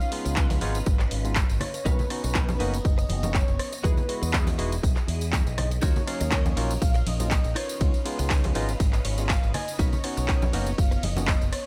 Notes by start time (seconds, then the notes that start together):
Already playing: C#4 D#4 F4 B4 C#5 D#5 F5
0.01 closed hi-hat, tambourine
0.11 G#3 B3 C#4 D#4 F4, open hi-hat
0.25 C#2, muted clean electric guitar stroke, closed hi-hat, tambourine
0.36 D#4 F4 B4 D#5, kick, clap, closed hi-hat, tambourine
0.50 open hi-hat, tambourine, high conga
0.61 G#1 G#3 B3 C#4 D#4 F4 B4 C#5, open hi-hat
0.75 closed hi-hat, tambourine
0.86 G#1, muted clean electric guitar stroke, kick, closed hi-hat, tambourine
0.99 muted clean electric guitar stroke, clap, closed hi-hat, tambourine
1.11 G#1, muted clean electric guitar stroke, open hi-hat
1.24 G#3 B3 C#4 D#4 F4, closed hi-hat, tambourine
1.35 kick, clap, closed hi-hat, tambourine
1.49 G#1, closed hi-hat, tambourine
1.60 C#5, cross-stick, open hi-hat, low conga
1.74 muted clean electric guitar stroke, closed hi-hat, tambourine
1.85 B1 A#3 B3 C#4 D#4 F#4 A#4 B4 C#5 A#5, kick, closed hi-hat, tambourine
1.99 closed hi-hat, tambourine, low conga
2.10 B3 C#4 D#4 F#4, cross-stick, open hi-hat
2.23 B1, muted clean electric guitar stroke, closed hi-hat, tambourine
2.35 D#4 A#4 B4 C#5, kick, clap, closed hi-hat, tambourine
2.49 closed hi-hat, tambourine, high conga
2.60 F#1 A#3 B3 C#4 D#4 F#4 A#4 B4 D#5, open hi-hat
2.74 closed hi-hat, tambourine
2.84 F#1 D#5, muted clean electric guitar stroke, kick, closed hi-hat, tambourine
2.98 muted clean electric guitar stroke, closed hi-hat, tambourine
3.09 F#1, muted clean electric guitar stroke, open hi-hat, high conga
3.23 A#3 B3 C#4 D#4 F#4, closed hi-hat, tambourine, high conga
3.34 C#5, kick, clap, closed hi-hat, tambourine
3.48 F#1, closed hi-hat, tambourine
3.59 cross-stick, open hi-hat
3.72 muted clean electric guitar stroke, closed hi-hat, tambourine
3.83 E2 G#3 B3 D#4 E4 F#4 G#4 B4 D#5, kick, closed hi-hat, tambourine
3.97 closed hi-hat, tambourine, low conga
4.08 G#3 B3 E4 F#4 D#5, open hi-hat
4.22 E2, muted clean electric guitar stroke, closed hi-hat, tambourine
4.33 E4 F#4 G#4 D#5, kick, clap, closed hi-hat, tambourine
4.47 open hi-hat, tambourine, high conga
4.58 E1 G#3 B3 D#4 E4 F#4 G#4 D#5, open hi-hat
4.72 closed hi-hat, tambourine
4.83 B1, muted clean electric guitar stroke, kick, closed hi-hat, tambourine
4.96 muted clean electric guitar stroke, clap, closed hi-hat, tambourine
5.07 E2, muted clean electric guitar stroke, open hi-hat
5.21 closed hi-hat, tambourine
5.33 kick, clap, closed hi-hat, tambourine
5.46 B1, closed hi-hat, tambourine
5.58 D#5, cross-stick, open hi-hat, low conga
5.71 muted clean electric guitar stroke, closed hi-hat, tambourine
5.81 D#2 F#3 A#3 C#4 D#4 F4 F#4 A#4 C#5, kick, closed hi-hat, ride, tambourine
5.96 closed hi-hat, tambourine, low conga
6.07 F#3 A#3 C#4 D#4 F5, cross-stick, open hi-hat, ride
6.20 D#2, muted clean electric guitar stroke, closed hi-hat, tambourine
6.31 D#4 F#4 A#4 D#5, kick, clap, closed hi-hat, ride, tambourine
6.46 closed hi-hat, tambourine, high conga
6.56 A#1 F#3 A#3 C#4 D#4 F4 F#4 A#4 C#5, open hi-hat, ride
6.71 closed hi-hat, tambourine
6.81 A#1 F5, muted clean electric guitar stroke, kick, closed hi-hat, ride, tambourine
6.94 muted clean electric guitar stroke, closed hi-hat, tambourine
7.06 A#1 D#5, muted clean electric guitar stroke, open hi-hat, ride, high conga
7.19 F#3 A#3 C#4 D#4 F4, closed hi-hat, tambourine, high conga
7.31 kick, clap, closed hi-hat, ride, tambourine
7.44 A#1, closed hi-hat, tambourine
7.55 C#4 D#4 F4 B4 C#5 D#5 F5, cross-stick, open hi-hat, ride
7.69 closed hi-hat, tambourine
7.80 C#2 G#3 B3 C#4 D#4 F4, kick, closed hi-hat, ride, tambourine
7.94 closed hi-hat, tambourine
8.05 G#3 B3 C#4 D#4 F4, open hi-hat, ride
8.19 C#2, muted clean electric guitar stroke, closed hi-hat, tambourine
8.30 D#4 F4 B4 C#5, kick, clap, closed hi-hat, ride, tambourine
8.44 open hi-hat, tambourine, high conga
8.55 G#1 G#3 B3 C#4 D#4 F4 B4 D#5, open hi-hat, ride
8.69 closed hi-hat, tambourine
8.80 G#1, muted clean electric guitar stroke, kick, closed hi-hat, ride, tambourine
8.93 muted clean electric guitar stroke, clap, closed hi-hat, tambourine
9.04 G#1 C#5, muted clean electric guitar stroke, open hi-hat, ride
9.18 G#3 B3 C#4 D#4 F4, closed hi-hat, tambourine
9.29 F5, kick, clap, closed hi-hat, ride, tambourine
9.43 G#1, closed hi-hat, tambourine
9.54 D#5 G#5, cross-stick, open hi-hat, ride, low conga
9.68 muted clean electric guitar stroke, closed hi-hat, tambourine
9.79 B1 A#3 B3 C#4 D#4 F#4 A#4 B4 C#5 A#5, kick, closed hi-hat, ride, tambourine
9.93 closed hi-hat, tambourine, low conga
10.04 B3 C#4 D#4 F#4, cross-stick, open hi-hat, ride
10.17 B1, muted clean electric guitar stroke, closed hi-hat, tambourine
10.28 D#4 A#4 B4 D#5, kick, clap, closed hi-hat, ride, tambourine
10.42 closed hi-hat, tambourine, high conga
10.53 F#1 A#3 B3 C#4 D#4 F#4 A#4 B4 C#5, open hi-hat, ride
10.66 closed hi-hat, tambourine
10.78 F#1 F5, muted clean electric guitar stroke, kick, closed hi-hat, ride, tambourine
10.91 muted clean electric guitar stroke, closed hi-hat, tambourine
11.03 F#1 D#5, muted clean electric guitar stroke, open hi-hat, ride, high conga
11.16 A#3 B3 C#4 D#4 F#4, closed hi-hat, tambourine, high conga
11.27 kick, clap, closed hi-hat, ride, tambourine
11.41 F#1, closed hi-hat, tambourine
11.53 C#5, cross-stick, open hi-hat, ride